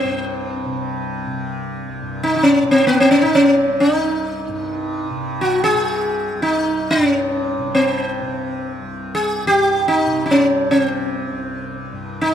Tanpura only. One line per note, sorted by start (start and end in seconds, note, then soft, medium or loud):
0.00 1.88 C2 medium
0.00 2.01 G2 medium
0.00 0.66 C3 medium
0.66 1.27 C3 medium
1.27 2.62 C3 medium
1.88 3.86 C2 medium
2.02 4.48 G2 soft
2.62 3.25 C3 medium
3.25 5.10 C3 soft
3.87 6.35 C2 medium
4.49 6.97 G2 medium
5.10 5.74 C3 medium
5.74 7.58 C3 medium
6.35 8.81 C2 medium
6.98 9.45 G2 medium
7.58 8.21 C3 medium
8.21 10.07 C3 medium
8.82 11.31 C2 medium
9.45 11.92 G2 medium
10.07 10.69 C3 medium
10.69 12.34 C3 medium
11.32 12.34 C2 medium
11.92 12.34 G2 medium